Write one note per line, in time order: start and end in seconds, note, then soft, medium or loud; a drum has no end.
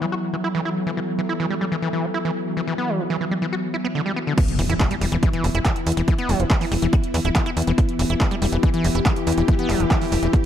0.00 4.36 E3 medium
0.00 0.06 E3 loud
0.00 4.40 F#3 medium
0.00 10.46 B3 medium
0.00 10.46 E4 medium
0.00 5.99 A4 medium
0.00 10.46 E5 medium
0.12 0.15 F#4 medium
0.33 0.36 E3 medium
0.44 0.48 E4 medium
0.55 0.61 E3 loud
0.65 0.70 E4 medium
0.87 0.91 E3 loud
0.97 1.00 E3 medium
1.18 1.21 E3 loud
1.29 1.33 E4 medium
1.40 1.46 E3 loud
1.50 1.55 G3 medium
1.61 1.65 G3 medium
1.72 1.76 E3 loud
1.82 1.89 E3 loud
1.93 2.05 E3 medium
2.04 2.06 F#3 medium
2.14 2.18 E4 medium
2.25 2.31 E3 loud
2.57 2.61 E3 loud
2.67 2.74 E3 loud
2.78 2.90 B3 medium
2.89 3.01 F#3 medium
2.99 3.04 E3 loud
3.10 3.16 E3 loud
3.21 3.25 E3 medium
3.31 3.34 G3 medium
3.42 3.46 E3 loud
3.53 3.55 F#4 medium
3.74 3.76 E4 medium
3.84 3.87 B3 loud
3.95 4.01 D3 loud
4.06 4.12 G3 medium
4.16 4.19 B3 medium
4.27 4.33 D3 medium
4.38 4.40 E3 medium
4.38 10.46 E3 medium
4.38 7.80 E4 medium
4.38 kick loud
4.38 closed hi-hat medium
4.38 crash loud
4.38 impact medium
4.48 closed hi-hat medium
4.59 4.65 E1 medium
4.59 4.61 E3 loud
4.59 open hi-hat loud
4.70 4.75 E1 medium
4.70 4.74 E4 medium
4.70 closed hi-hat medium
4.80 4.87 E3 loud
4.80 10.46 B4 loud
4.80 kick loud
4.80 clap loud
4.80 closed hi-hat soft
4.91 4.95 G3 medium
4.91 closed hi-hat medium
5.01 5.07 E1 loud
5.01 5.06 G3 medium
5.01 open hi-hat loud
5.12 5.18 E1 medium
5.12 5.16 E3 loud
5.12 closed hi-hat medium
5.23 5.29 E3 loud
5.23 kick loud
5.23 closed hi-hat medium
5.33 5.46 E3 medium
5.33 closed hi-hat medium
5.44 5.50 E1 medium
5.44 5.47 F#3 medium
5.44 open hi-hat loud
5.55 5.61 E1 medium
5.55 5.59 E4 medium
5.55 closed hi-hat medium
5.65 5.72 E3 loud
5.65 kick loud
5.65 clap loud
5.65 closed hi-hat medium
5.76 closed hi-hat medium
5.87 5.92 E2 medium
5.87 open hi-hat loud
5.92 closed hi-hat medium
5.97 6.03 E1 medium
5.97 6.01 E3 loud
5.97 closed hi-hat medium
6.08 6.14 E3 loud
6.08 kick loud
6.08 closed hi-hat medium
6.18 6.31 B3 medium
6.18 closed hi-hat medium
6.29 6.35 E1 medium
6.29 6.41 F#3 medium
6.29 open hi-hat loud
6.40 6.46 E1 medium
6.40 6.44 E3 loud
6.40 closed hi-hat medium
6.50 6.57 E3 loud
6.50 kick loud
6.50 clap loud
6.50 closed hi-hat soft
6.61 6.65 E3 medium
6.61 open hi-hat medium
6.72 6.78 E1 loud
6.72 6.74 G3 medium
6.72 open hi-hat loud
6.82 6.88 E1 medium
6.82 6.87 E3 loud
6.82 closed hi-hat medium
6.93 6.95 F#4 medium
6.93 kick loud
6.93 closed hi-hat medium
7.04 closed hi-hat medium
7.14 7.20 E2 loud
7.14 7.17 E3 medium
7.14 open hi-hat loud
7.25 7.31 D1 medium
7.25 7.29 E4 medium
7.25 closed hi-hat medium
7.35 7.42 E3 loud
7.35 kick loud
7.35 clap loud
7.35 closed hi-hat medium
7.46 7.50 E4 medium
7.46 closed hi-hat medium
7.57 7.63 E2 loud
7.57 open hi-hat loud
7.62 closed hi-hat medium
7.67 7.73 E1 medium
7.67 7.72 E3 loud
7.67 closed hi-hat medium
7.78 7.81 E3 medium
7.78 10.46 G4 medium
7.78 kick loud
7.78 closed hi-hat medium
7.89 closed hi-hat medium
7.99 8.05 E1 loud
7.99 8.02 E3 loud
7.99 open hi-hat loud
8.10 8.16 E1 medium
8.10 8.14 E4 medium
8.10 closed hi-hat medium
8.21 8.27 E3 loud
8.21 kick loud
8.21 clap loud
8.21 closed hi-hat soft
8.31 8.35 G3 medium
8.31 closed hi-hat medium
8.42 8.48 E1 loud
8.42 8.46 G3 medium
8.42 open hi-hat loud
8.52 8.58 E1 medium
8.52 8.57 E3 loud
8.52 closed hi-hat medium
8.63 8.70 E3 loud
8.63 kick loud
8.63 closed hi-hat medium
8.74 8.86 E3 medium
8.74 closed hi-hat medium
8.84 8.90 E1 loud
8.84 8.87 F#3 medium
8.84 open hi-hat loud
8.95 9.01 E1 medium
8.95 8.99 E4 medium
8.95 closed hi-hat medium
9.06 9.12 E3 loud
9.06 kick loud
9.06 clap loud
9.06 closed hi-hat medium
9.16 closed hi-hat medium
9.27 9.33 E2 medium
9.27 open hi-hat loud
9.32 closed hi-hat medium
9.38 9.44 E1 medium
9.38 9.42 E3 loud
9.38 closed hi-hat medium
9.48 9.55 E3 loud
9.48 kick loud
9.48 closed hi-hat medium
9.59 9.71 B3 medium
9.59 closed hi-hat medium
9.70 9.75 E1 loud
9.70 9.82 F#3 medium
9.70 clap medium
9.70 open hi-hat loud
9.80 9.86 E1 medium
9.80 9.84 E3 loud
9.80 closed hi-hat medium
9.91 9.97 E3 loud
9.91 kick loud
9.91 clap loud
9.91 closed hi-hat soft
10.01 10.06 E3 medium
10.01 open hi-hat medium
10.12 10.18 E1 loud
10.12 10.15 G3 medium
10.12 open hi-hat loud
10.23 10.29 E1 medium
10.23 10.27 E3 loud
10.23 closed hi-hat medium
10.33 10.36 F#4 medium
10.33 kick loud
10.33 closed hi-hat medium